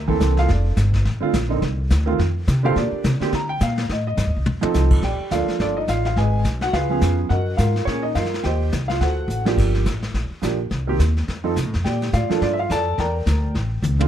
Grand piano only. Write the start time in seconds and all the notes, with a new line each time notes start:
0.08 E3 A#3 C4 A4
0.39 F4 F5
0.50 D4 F4 A4 D5
1.20 D3 A3 C4 F4
1.49 D3 A#3 C4 D#4
2.06 D#3 A3 C4 F4
2.63 D3 A#3 C4 F4 G4 A4 C5 F5
2.77 D4 G4 A#4 D5
3.20 D3 A#3 C4 G4
3.35 A#5
3.49 G5
3.63 F5
3.92 D#5
4.07 D#5
4.61 F3 C4 D#4 A4
5.03 G4 D5 G5
5.31 F3 A#3 D4 F4 A4 D5 F5
5.61 D4 F4 A4 D5
5.77 D#4 D#5
5.89 F4 F5
6.06 F4 F5
6.18 G#4 B4 D#5 G#5
6.62 F#4 F#5
6.73 F4 G#4 B4 F5
6.89 F3 B3 C#4 G#4
7.29 F#4 A#4 D#5 F#5
7.57 F4 A#4 F5
7.85 C#4 G#4 A#4 C#5
8.03 D#4 D#5
8.15 F4 A#4 F5
8.43 G4 C5 D#5 G5
8.88 F4 F5
9.01 F#4 A4 C5 F#5
9.45 F3 A#3 D4 G4
10.42 F3 A#3 D4 G4
10.87 D#3 A#3 C4 G4
11.44 F3 C4 D#4 A4
11.84 G4 D5 G5
12.13 F4 D5 F5
12.29 F3 A#3 D4 A4
12.42 D4 F4 A4 D5
12.53 E5
12.59 F4 F5
12.72 A4 D5 A5
12.99 A#4 D5 G5 A#5
13.99 D3 A3 C4 F4